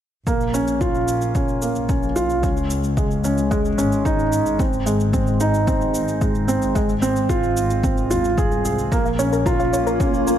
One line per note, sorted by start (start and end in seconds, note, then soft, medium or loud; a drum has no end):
0.27 1.54 A#1 medium
0.27 0.43 A#3 medium
0.27 kick medium
0.27 shaker soft
0.41 shaker soft
0.54 0.80 C#4 medium
0.54 shaker medium
0.68 shaker soft
0.81 0.96 F4 medium
0.81 kick medium
0.81 shaker soft
0.95 shaker soft
1.08 shaker medium
1.21 shaker soft
1.35 1.61 C#4 medium
1.35 kick medium
1.35 shaker soft
1.48 shaker soft
1.62 1.88 A#3 medium
1.62 shaker medium
1.75 2.43 A#1 medium
1.75 shaker soft
1.89 2.04 C#4 medium
1.89 kick medium
1.89 shaker soft
2.03 shaker soft
2.16 2.42 F4 medium
2.16 shaker medium
2.30 shaker soft
2.43 3.71 C#2 medium
2.43 2.69 C#4 medium
2.43 kick medium
2.43 shaker soft
2.57 shaker soft
2.70 shaker medium
2.84 shaker soft
2.97 3.23 G#3 medium
2.97 kick medium
2.97 shaker soft
3.11 shaker soft
3.24 3.50 C#4 medium
3.24 shaker medium
3.38 shaker soft
3.51 3.67 G#3 medium
3.51 kick medium
3.51 shaker soft
3.65 shaker soft
3.78 4.38 G#1 medium
3.78 4.04 C#4 medium
3.78 shaker medium
3.92 shaker soft
4.05 4.21 D#4 medium
4.05 kick medium
4.05 shaker soft
4.19 shaker soft
4.32 shaker medium
4.46 6.54 G#1 medium
4.46 shaker soft
4.59 4.85 C4 medium
4.59 kick medium
4.59 shaker soft
4.73 shaker soft
4.86 5.12 G#3 medium
4.86 shaker medium
5.00 shaker soft
5.13 5.29 C4 medium
5.13 kick medium
5.13 shaker soft
5.27 shaker soft
5.40 5.66 D#4 medium
5.40 shaker medium
5.54 shaker soft
5.67 5.93 C4 medium
5.67 kick loud
5.67 shaker soft
5.81 shaker soft
5.94 shaker medium
6.08 shaker soft
6.21 6.47 G#3 medium
6.21 kick medium
6.21 shaker soft
6.35 shaker soft
6.48 6.74 C4 medium
6.48 shaker medium
6.62 7.22 G#1 medium
6.62 shaker soft
6.75 6.91 G#3 medium
6.75 kick medium
6.75 shaker soft
6.89 shaker soft
7.02 7.28 C4 medium
7.02 shaker medium
7.16 shaker soft
7.29 8.84 G#1 medium
7.29 7.45 F4 medium
7.29 kick medium
7.29 shaker soft
7.43 shaker soft
7.57 shaker medium
7.70 shaker soft
7.84 8.09 C4 medium
7.84 kick loud
7.84 shaker soft
7.97 shaker soft
8.11 8.28 D#2 medium
8.11 8.26 F4 medium
8.11 shaker medium
8.24 shaker soft
8.38 8.84 C2 medium
8.38 8.64 G#4 medium
8.38 kick medium
8.38 shaker soft
8.52 shaker soft
8.65 8.91 G#4 medium
8.65 shaker medium
8.79 shaker soft
8.92 10.19 A#1 medium
8.92 10.38 A#3 medium
8.92 9.07 A#3 medium
8.92 9.01 A#5 medium
8.92 kick medium
8.92 shaker soft
9.05 9.14 F5 medium
9.05 shaker soft
9.19 9.45 C#4 medium
9.19 10.38 F4 medium
9.19 9.28 C#5 medium
9.19 shaker medium
9.32 9.38 A#4 medium
9.32 shaker soft
9.46 9.61 F4 medium
9.46 9.51 A#5 medium
9.46 kick medium
9.46 shaker soft
9.52 10.38 C#5 medium
9.59 9.68 F5 medium
9.59 shaker soft
9.73 9.82 C#5 medium
9.73 shaker medium
9.87 9.96 A#4 loud
9.87 10.38 C5 medium
9.87 shaker soft
10.00 10.26 C#4 medium
10.00 kick loud
10.00 shaker soft
10.14 shaker soft
10.27 10.38 A#3 medium
10.27 shaker medium